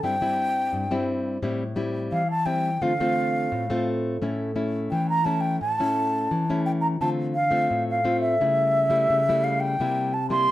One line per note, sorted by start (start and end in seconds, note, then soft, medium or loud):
0.03 0.69 G2 medium
0.03 0.15 G3 medium
0.03 0.15 C4 medium
0.03 0.15 E4 medium
0.03 1.04 G5 medium
0.21 0.85 G3 medium
0.21 0.85 C4 medium
0.21 0.85 E4 medium
0.73 1.39 G2 medium
0.91 1.37 G3 medium
0.91 1.37 C4 medium
0.91 1.38 E4 medium
1.43 2.09 A2 medium
1.43 1.63 G3 medium
1.43 1.63 C4 medium
1.43 1.63 E4 medium
1.76 2.22 G3 medium
1.76 2.22 C4 medium
1.76 2.22 E4 medium
2.12 2.78 E3 medium
2.12 2.28 F5 medium
2.31 2.47 A5 medium
2.46 2.69 G3 medium
2.46 2.69 C4 medium
2.46 2.69 E4 medium
2.46 2.84 G5 medium
2.82 3.48 D3 medium
2.82 2.92 A3 medium
2.82 2.92 C4 medium
2.82 2.93 F4 medium
2.82 3.87 F5 medium
3.00 3.64 A3 medium
3.00 3.64 C4 medium
3.00 3.64 F4 medium
3.52 4.18 A2 medium
3.70 4.16 A3 medium
3.70 4.16 C4 medium
3.70 4.17 F4 medium
4.22 4.88 A2 medium
4.22 4.51 A3 medium
4.22 4.51 C#4 medium
4.22 4.51 E4 medium
4.56 5.20 A3 medium
4.56 5.20 C#4 soft
4.56 5.20 E4 medium
4.91 5.58 E3 medium
4.91 5.07 G5 medium
5.10 5.26 A#5 medium
5.25 5.58 A3 medium
5.25 5.59 C#4 medium
5.25 5.59 E4 medium
5.25 5.42 A5 medium
5.41 5.59 G5 medium
5.61 6.27 A2 medium
5.61 6.62 A5 loud
5.80 6.43 A3 medium
5.80 6.44 C#4 medium
5.80 6.44 E4 medium
6.31 6.97 E3 medium
6.50 6.96 A3 medium
6.50 6.96 C#4 medium
6.50 6.96 E4 medium
6.66 6.72 G5 medium
6.81 6.87 A#5 medium
7.01 7.67 D3 medium
7.01 7.33 A3 soft
7.01 7.34 C4 medium
7.01 7.34 F4 medium
7.01 7.09 A5 medium
7.35 7.84 F5 medium
7.51 7.99 A3 medium
7.51 7.99 C4 medium
7.51 7.99 F4 medium
7.71 8.37 A2 medium
7.90 8.20 F5 medium
8.04 8.34 A3 medium
8.04 8.34 C4 medium
8.04 8.35 F4 medium
8.21 9.46 E5 medium
8.41 9.07 C#3 medium
8.41 8.87 G3 soft
8.41 8.88 A3 medium
8.41 8.88 E4 medium
8.90 9.21 G3 medium
8.90 9.21 A3 medium
8.90 9.21 E4 medium
9.10 9.77 C#3 medium
9.29 9.75 G3 medium
9.29 9.75 A3 medium
9.29 9.76 E4 medium
9.44 9.62 F5 medium
9.60 10.15 G5 medium
9.80 10.47 C3 medium
9.80 10.13 G3 medium
9.80 10.13 A#3 medium
9.80 10.14 E4 medium
10.14 10.30 A5 medium
10.30 10.52 G3 medium
10.30 10.52 A#3 medium
10.30 10.52 E4 medium
10.30 10.52 C6 loud